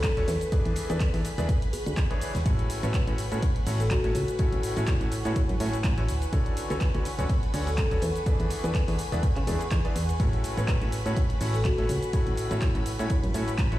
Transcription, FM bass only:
0.17 0.24 D1 medium
0.28 0.37 E2 medium
0.65 0.73 E2 medium
0.90 0.97 E2 medium
1.14 1.21 E2 loud
1.38 1.45 E1 medium
1.86 1.94 D2 loud
2.35 2.42 E1 medium
2.46 2.55 A1 loud
2.83 2.90 A1 loud
3.08 3.15 A1 loud
3.32 3.39 A2 medium
3.67 3.97 A1 medium
4.04 4.11 A2 medium
4.15 4.24 C#2 medium
4.53 4.60 A1 medium
4.77 4.84 A1 loud
5.01 5.08 A1 loud
5.25 5.32 A2 medium
5.49 5.57 F#2 loud
5.60 5.69 A2 loud
5.84 6.10 A1 loud
6.09 6.26 D2 medium
6.33 6.42 D2 loud
6.70 6.78 D2 loud
6.94 7.02 D2 loud
7.19 7.26 D1 medium
7.54 7.84 D2 medium
7.91 7.99 D1 medium
8.02 8.11 E2 medium
8.40 8.47 E2 medium
8.64 8.71 E2 loud
8.88 8.95 E2 loud
9.12 9.20 E1 medium
9.36 9.44 C#3 loud
9.47 9.56 E1 loud
9.71 9.80 E2 loud
9.96 10.13 E2 medium
10.20 10.29 A1 loud
10.57 10.65 A1 loud
10.82 10.89 A1 loud
11.06 11.13 A2 medium
11.41 11.71 A1 medium
11.78 11.86 A2 medium
11.89 11.98 C#2 medium
12.27 12.34 A1 medium
12.51 12.58 A1 loud
12.75 12.82 A1 loud
12.99 13.07 A2 medium
13.24 13.31 F#2 loud
13.34 13.43 A2 loud
13.59 13.79 A1 loud

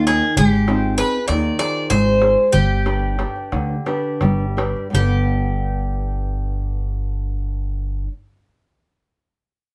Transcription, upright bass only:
0.00 0.20 D#2 loud
0.38 1.01 G#1 medium
1.29 1.50 D#2 medium
1.91 2.35 G#1 loud
2.54 3.23 G1 medium
3.53 3.76 D2 medium
4.22 4.72 G1 medium
4.94 8.07 G1 medium

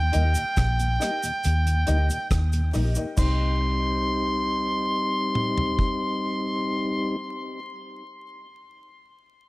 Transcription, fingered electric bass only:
0.00 0.10 D#2 medium
0.15 0.34 D#2 medium
0.58 0.97 A#1 medium
1.45 1.84 D#2 medium
1.89 2.08 D2 medium
2.31 2.71 D#2 medium
2.75 2.95 A#1 medium
3.18 7.17 C2 medium

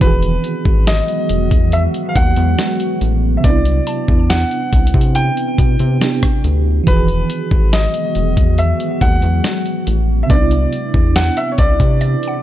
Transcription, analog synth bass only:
0.01 0.37 E1 loud
0.65 1.01 G#1 medium
1.30 1.53 E1 medium
1.51 1.87 E2 loud
2.16 2.34 D#2 loud
2.37 2.55 E2 loud
3.01 3.37 A1 medium
3.44 3.80 C2 loud
4.08 4.44 E2 medium
4.73 4.91 C2 loud
4.94 5.30 C3 loud
5.58 5.76 B2 medium
5.80 5.98 C3 loud
6.44 6.80 D2 medium
6.87 7.23 E1 loud
7.51 7.87 G#1 medium
8.16 8.39 E1 medium
8.37 8.73 E2 loud
9.01 9.19 D#2 loud
9.23 9.41 E2 loud
9.87 10.23 A1 medium
10.30 10.66 C2 loud
10.94 11.30 E2 medium
11.58 11.76 C2 medium
11.80 12.16 C3 loud

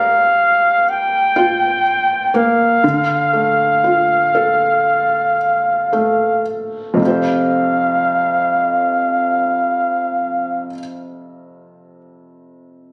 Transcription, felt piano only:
0.00 2.30 A#3 soft
0.00 0.83 F4 soft
0.00 1.31 G4 soft
0.00 1.81 A#4 soft
1.36 2.80 F4 soft
2.34 2.82 A#3 soft
2.84 6.97 D3 soft
3.33 5.35 A3 soft
3.84 5.89 F4 soft
4.35 6.42 A4 soft
5.93 6.97 A3 soft
6.94 10.66 F2 soft
6.94 10.69 C3 soft
6.99 10.72 A3 soft
6.99 10.74 F4 soft
7.05 10.77 G4 soft
7.05 10.80 C5 soft

